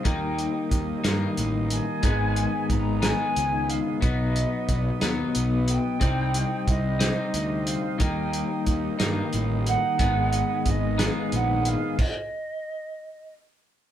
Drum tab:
CC |------|------|------|------|
HH |xxxxxx|xxxxxx|xxxxxx|xxxxxx|
SD |---o--|---o--|---o--|---o--|
BD |o-o---|o-o---|o-o---|o-o---|

CC |------|------|x-----|
HH |xxxxxx|xxxxxx|------|
SD |---o--|---o--|------|
BD |o-o---|o-o---|o-----|